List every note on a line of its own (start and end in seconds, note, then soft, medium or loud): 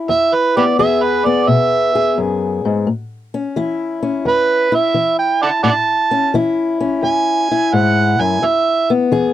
0.00 0.79 E4 medium
0.09 0.74 E2 medium
0.09 0.35 E5 loud
0.34 0.56 B4 medium
0.57 1.25 B3 medium
0.57 0.65 G4 medium
0.57 0.63 B4 medium
0.57 0.78 D5 medium
0.79 1.44 E3 medium
0.79 1.94 G#4 medium
0.79 1.04 E5 medium
1.02 1.26 B4 medium
1.25 2.88 B3 medium
1.25 1.49 D5 medium
1.48 2.13 B2 medium
1.48 2.16 E5 medium
1.95 2.85 G#4 medium
2.18 2.64 F#2 medium
2.65 2.88 G#2 medium
2.87 3.52 A2 medium
3.34 4.02 C#4 medium
3.56 4.22 E3 medium
3.56 4.72 E4 medium
4.03 5.62 C#4 medium
4.25 4.91 E2 medium
4.25 4.76 B4 medium
4.72 6.34 E4 medium
4.72 5.18 E5 medium
4.94 5.60 E3 medium
5.18 5.41 G5 medium
5.42 5.49 D5 medium
5.42 5.51 F#5 medium
5.42 5.63 A5 medium
5.63 6.29 A2 medium
5.63 5.72 D5 medium
5.63 5.70 F#5 medium
5.63 6.32 A5 loud
6.11 6.79 C#4 medium
6.34 6.99 E3 medium
6.34 7.51 E4 medium
6.80 8.40 C#4 medium
7.03 7.68 E2 medium
7.03 7.75 G#5 medium
7.51 9.12 E4 medium
7.73 8.19 G#2 medium
7.73 8.22 F#5 medium
8.20 8.42 F#2 medium
8.20 8.47 G#5 medium
8.42 9.07 E2 medium
8.42 8.89 E5 loud
8.90 9.33 B3 medium
9.12 9.33 E3 medium
9.12 9.33 G#4 medium